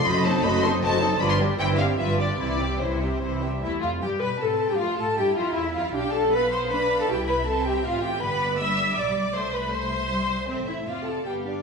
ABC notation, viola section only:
X:1
M:3/4
L:1/16
Q:1/4=156
K:C
V:1 name="Viola section"
[A,^F]2 [C^D]2 [A,F]2 [CD]2 [A,F]2 [CD]2 | [F,F]2 [G,D]2 [E,E]2 [G,C]2 [F,F]2 [G,D]2 | [E,E]2 [G,C]2 [E,E]2 [G,C]2 [E,E]2 [G,C]2 | E2 F2 G2 B2 A3 G |
F2 A2 G2 F2 E2 F2 | G2 A2 B2 c2 B3 A | G2 B2 A2 G2 F2 G2 | B4 e4 d4 |
c2 B2 c8 | C2 E2 F2 A2 G2 D2 |]